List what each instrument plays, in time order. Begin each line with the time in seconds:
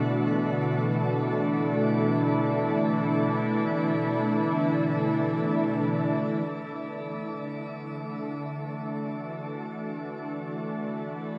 Already playing: analog synth pad B2 E3 A3 D4 F#4, synth drone D3 A3
1.37 analog synth pad E4
6.49 synth drone D3 A3
8.85 analog synth pad F#4